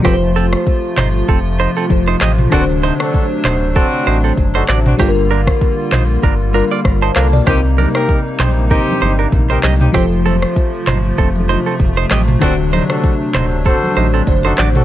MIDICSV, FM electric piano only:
0, 0, Header, 1, 2, 480
1, 0, Start_track
1, 0, Tempo, 618557
1, 36, Time_signature, 4, 2, 24, 8
1, 11520, End_track
2, 0, Start_track
2, 0, Title_t, "FM electric piano"
2, 0, Program_c, 0, 5
2, 0, Control_c, 0, 64, 127
2, 16, Note_on_c, 0, 53, 79
2, 29, Note_on_c, 0, 65, 70
2, 42, Note_on_c, 0, 69, 72
2, 46, Control_c, 0, 64, 0
2, 54, Note_on_c, 0, 71, 70
2, 100, Note_off_c, 0, 71, 0
2, 105, Note_on_c, 0, 72, 88
2, 174, Control_c, 0, 64, 127
2, 1437, Note_off_c, 0, 53, 0
2, 1443, Note_off_c, 0, 65, 0
2, 1450, Note_off_c, 0, 69, 0
2, 1467, Note_on_c, 0, 53, 60
2, 1473, Note_on_c, 0, 65, 55
2, 1476, Note_off_c, 0, 72, 0
2, 1479, Note_on_c, 0, 69, 54
2, 1486, Note_on_c, 0, 72, 68
2, 1937, Note_on_c, 0, 50, 79
2, 1950, Note_on_c, 0, 62, 73
2, 1951, Note_off_c, 0, 53, 0
2, 1954, Note_off_c, 0, 65, 0
2, 1957, Note_off_c, 0, 69, 0
2, 1961, Note_off_c, 0, 72, 0
2, 1963, Note_on_c, 0, 66, 74
2, 1964, Control_c, 0, 64, 0
2, 1976, Note_on_c, 0, 70, 69
2, 2021, Note_off_c, 0, 70, 0
2, 2026, Note_on_c, 0, 72, 83
2, 2101, Control_c, 0, 64, 127
2, 3835, Note_off_c, 0, 50, 0
2, 3842, Note_off_c, 0, 62, 0
2, 3848, Note_off_c, 0, 66, 0
2, 3856, Note_on_c, 0, 55, 74
2, 3869, Note_on_c, 0, 62, 71
2, 3880, Note_off_c, 0, 72, 0
2, 3882, Note_on_c, 0, 65, 72
2, 3885, Control_c, 0, 64, 0
2, 3895, Note_on_c, 0, 69, 69
2, 3941, Note_off_c, 0, 69, 0
2, 3945, Note_on_c, 0, 70, 84
2, 4030, Control_c, 0, 64, 127
2, 5042, Note_off_c, 0, 55, 0
2, 5048, Note_off_c, 0, 62, 0
2, 5055, Note_off_c, 0, 65, 0
2, 5066, Note_on_c, 0, 55, 59
2, 5072, Note_on_c, 0, 62, 53
2, 5075, Note_off_c, 0, 70, 0
2, 5079, Note_on_c, 0, 65, 54
2, 5085, Note_on_c, 0, 70, 64
2, 5317, Note_off_c, 0, 65, 0
2, 5320, Note_off_c, 0, 70, 0
2, 5447, Note_on_c, 0, 81, 69
2, 5452, Note_on_c, 0, 72, 58
2, 5550, Note_off_c, 0, 81, 0
2, 5552, Note_off_c, 0, 72, 0
2, 5556, Note_on_c, 0, 77, 75
2, 5561, Note_on_c, 0, 69, 62
2, 5681, Note_off_c, 0, 77, 0
2, 5684, Note_off_c, 0, 69, 0
2, 5688, Note_on_c, 0, 74, 71
2, 5693, Note_on_c, 0, 65, 63
2, 5776, Note_on_c, 0, 48, 74
2, 5789, Note_on_c, 0, 60, 70
2, 5791, Note_off_c, 0, 55, 0
2, 5794, Note_off_c, 0, 62, 0
2, 5802, Note_on_c, 0, 63, 70
2, 5806, Control_c, 0, 64, 0
2, 5815, Note_on_c, 0, 70, 86
2, 5916, Note_off_c, 0, 74, 0
2, 5918, Note_off_c, 0, 65, 0
2, 5929, Control_c, 0, 64, 127
2, 7675, Note_off_c, 0, 48, 0
2, 7681, Note_off_c, 0, 60, 0
2, 7688, Note_off_c, 0, 63, 0
2, 7694, Note_off_c, 0, 70, 0
2, 7697, Note_on_c, 0, 53, 79
2, 7710, Note_on_c, 0, 65, 74
2, 7723, Note_on_c, 0, 69, 71
2, 7727, Control_c, 0, 64, 0
2, 7736, Note_on_c, 0, 72, 85
2, 7853, Control_c, 0, 64, 127
2, 9595, Note_off_c, 0, 53, 0
2, 9602, Note_off_c, 0, 65, 0
2, 9608, Note_off_c, 0, 69, 0
2, 9615, Note_off_c, 0, 72, 0
2, 9615, Note_on_c, 0, 50, 80
2, 9628, Note_on_c, 0, 62, 73
2, 9641, Note_on_c, 0, 65, 58
2, 9645, Control_c, 0, 64, 0
2, 9655, Note_on_c, 0, 72, 87
2, 9692, Note_on_c, 0, 66, 69
2, 9694, Note_off_c, 0, 65, 0
2, 9800, Control_c, 0, 64, 127
2, 11036, Note_off_c, 0, 50, 0
2, 11043, Note_off_c, 0, 62, 0
2, 11057, Note_off_c, 0, 72, 0
2, 11066, Note_on_c, 0, 50, 61
2, 11069, Note_off_c, 0, 66, 0
2, 11072, Note_on_c, 0, 62, 53
2, 11079, Note_on_c, 0, 66, 54
2, 11085, Note_on_c, 0, 72, 64
2, 11520, Note_off_c, 0, 50, 0
2, 11520, Note_off_c, 0, 62, 0
2, 11520, Note_off_c, 0, 66, 0
2, 11520, Note_off_c, 0, 72, 0
2, 11520, End_track
0, 0, End_of_file